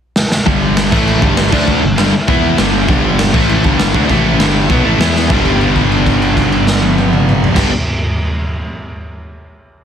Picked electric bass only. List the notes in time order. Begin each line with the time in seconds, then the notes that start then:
0.47 G1
0.92 A1
1.22 G1
1.52 D2
1.83 G1
1.98 G1
2.28 E2
2.58 G1
2.88 G1
3.34 A1
3.64 G1
3.95 D2
4.10 A1
4.39 G1
4.70 B1
4.84 A1
5.00 E2
5.30 G1
7.56 G1